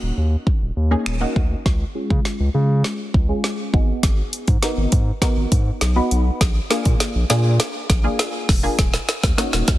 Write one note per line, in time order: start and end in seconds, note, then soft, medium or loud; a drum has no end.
0.00 0.12 D#1 medium
0.00 0.68 A#3 medium
0.00 0.68 C#4 medium
0.00 0.68 D#4 medium
0.00 0.68 F#4 loud
0.17 0.36 D#2 loud
0.47 kick loud
0.62 0.71 D#1 medium
0.76 0.95 D#2 loud
0.91 1.15 A#3 medium
0.91 1.15 C#4 medium
0.91 1.15 D#4 medium
0.91 1.15 G#4 medium
1.06 1.25 D#1 loud
1.06 finger snap loud
1.21 1.57 A#3 medium
1.21 1.57 C#4 medium
1.21 1.57 D#4 medium
1.21 1.57 F#4 loud
1.36 1.55 D2 medium
1.36 kick medium
1.66 1.85 C#2 loud
1.66 kick loud
1.66 snare medium
1.95 2.43 G#3 medium
1.95 2.43 C#4 medium
1.95 2.43 F4 medium
1.95 2.43 G#4 loud
2.10 2.20 C#3 medium
2.10 kick medium
2.25 snare medium
2.40 2.49 C#2 medium
2.54 2.83 C#3 loud
2.54 3.14 G#3 medium
2.54 3.14 C#4 medium
2.54 3.15 F4 medium
2.54 3.15 G#4 medium
2.84 snare medium
3.14 3.33 C#2 loud
3.14 kick medium
3.29 3.73 G#3 medium
3.29 3.74 C#4 medium
3.29 3.74 F4 medium
3.29 3.72 G#4 loud
3.44 snare medium
3.73 3.93 G#1 loud
3.73 4.45 B3 medium
3.73 4.45 D#4 medium
3.73 4.45 F#4 medium
3.73 4.45 G#4 loud
3.73 kick medium
4.03 4.22 G#1 loud
4.03 kick loud
4.03 snare medium
4.03 closed hi-hat medium
4.33 closed hi-hat medium
4.48 4.57 G#2 medium
4.48 kick medium
4.48 closed hi-hat soft
4.62 5.10 B3 medium
4.62 5.10 D#4 medium
4.62 5.10 F#4 medium
4.62 5.11 A#4 loud
4.62 snare medium
4.62 closed hi-hat medium
4.77 4.87 G#1 loud
4.92 5.11 G#2 loud
4.92 kick medium
4.92 closed hi-hat medium
5.22 5.82 B3 loud
5.22 5.82 D#4 medium
5.22 5.82 F#4 medium
5.22 5.82 A#4 loud
5.22 kick loud
5.22 snare medium
5.22 closed hi-hat loud
5.37 5.46 G#1 loud
5.52 5.71 G#2 loud
5.52 kick loud
5.52 closed hi-hat medium
5.81 6.00 B1 medium
5.81 snare medium
5.81 closed hi-hat medium
5.96 6.41 B3 loud
5.96 6.41 D#4 medium
5.96 6.41 F#4 medium
5.96 6.41 B4 loud
6.11 6.30 B1 loud
6.11 closed hi-hat medium
6.41 6.60 A#1 loud
6.41 kick loud
6.41 snare medium
6.41 closed hi-hat medium
6.70 7.18 A#3 loud
6.70 7.18 D4 medium
6.70 7.18 F4 medium
6.70 7.19 G#4 loud
6.70 snare medium
6.70 closed hi-hat medium
6.85 6.95 A#2 medium
6.85 kick medium
6.85 closed hi-hat medium
7.00 snare medium
7.00 closed hi-hat medium
7.15 7.25 A#1 medium
7.30 7.59 A#2 loud
7.30 7.90 A#3 medium
7.30 7.90 D4 medium
7.30 7.90 F4 medium
7.30 7.90 G#4 medium
7.30 snare medium
7.30 closed hi-hat medium
7.60 snare medium
7.60 closed hi-hat loud
7.90 8.09 A#1 loud
7.90 kick loud
7.90 snare medium
7.90 closed hi-hat medium
8.04 8.52 A#3 medium
8.04 8.52 D4 medium
8.04 8.52 F4 medium
8.04 8.52 G#4 loud
8.19 snare loud
8.19 closed hi-hat medium
8.49 8.68 E1 loud
8.49 kick loud
8.49 snare loud
8.49 open hi-hat medium
8.63 8.78 A#3 loud
8.63 8.78 D4 medium
8.63 8.79 F4 medium
8.63 8.79 G#4 loud
8.79 8.98 D#1 loud
8.79 kick loud
8.79 snare loud
8.79 closed hi-hat medium
8.94 snare loud
9.09 snare loud
9.09 closed hi-hat medium
9.23 9.33 D#2 medium
9.23 kick medium
9.23 snare loud
9.23 closed hi-hat medium
9.38 9.78 A#3 medium
9.38 9.78 C#4 medium
9.38 9.78 D#4 medium
9.38 9.78 F#4 loud
9.38 snare loud
9.38 closed hi-hat medium
9.53 9.63 D#1 loud
9.53 snare loud
9.68 9.78 D#2 loud
9.68 kick loud
9.68 snare loud
9.68 closed hi-hat medium